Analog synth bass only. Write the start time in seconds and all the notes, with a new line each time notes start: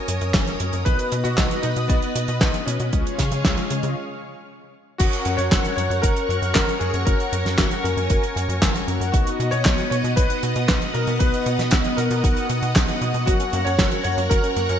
0.08 F#2
0.21 F#2
0.34 F#1
0.60 F#2
0.73 F#2
0.86 B1
1.12 B2
1.25 B2
1.38 B1
1.64 B2
1.77 B2
1.90 B1
2.15 B2
2.28 B2
2.41 B1
2.67 B2
2.80 B2
2.93 C#2
3.19 C#3
3.32 C#3
3.45 C#2
3.71 C#3
3.83 C#3
5.00 F#1
5.26 F#2
5.38 F#2
5.52 F#1
5.77 F#2
5.90 F#2
6.03 F#1
6.29 F#2
6.42 F#2
6.55 F#1
6.81 F#2
6.94 F#2
7.07 F#1
7.32 F#2
7.45 F#2
7.59 F#1
7.84 F#2
7.97 F#2
8.10 F#1
8.36 F#2
8.49 F#2
8.62 F#1
8.88 F#2
9.01 F#2
9.14 B1
9.40 B2
9.53 B2
9.65 B1
9.91 B2
10.04 B2
10.17 B1
10.43 B2
10.56 B2
10.69 B1
10.95 B2
11.07 B2
11.21 B1
11.46 B2
11.59 B2
11.72 B1
11.98 B2
12.11 B2
12.24 B1
12.50 B2
12.62 B2
12.76 B1
13.01 B2
13.14 B2
13.27 F#1
13.53 F#2
13.66 F#2
13.79 F#1
14.05 F#2
14.18 F#2
14.31 F#1
14.56 F#2
14.69 F#2